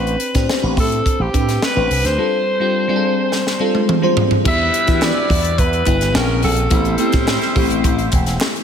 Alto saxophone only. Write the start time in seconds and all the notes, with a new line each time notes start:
Already playing: B4
0.80 A4
1.21 G4
1.64 B4
2.06 C5
4.48 E5
5.04 D5
5.59 B4
6.16 A#4
6.44 A4